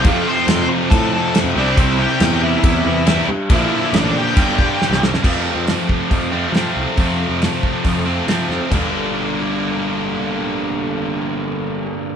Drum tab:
CC |x---x---x---x---|x---x---x---x---|x---x---x-------|x---------------|
HH |----------------|----------------|----------------|----o---o---o---|
SD |----o-------o---|----o-------o---|----o-------oooo|----o-------o---|
FT |----------------|----------------|----------------|----------------|
BD |o-------o-------|o-------o-------|o-------o-o-----|o-----o-o-------|

CC |----------------|x---------------|----------------|
HH |o---o---o---o---|----------------|----------------|
SD |----o-------o-o-|----------------|----------------|
FT |----------------|o---------------|----------------|
BD |o-----o-o-------|o---------------|----------------|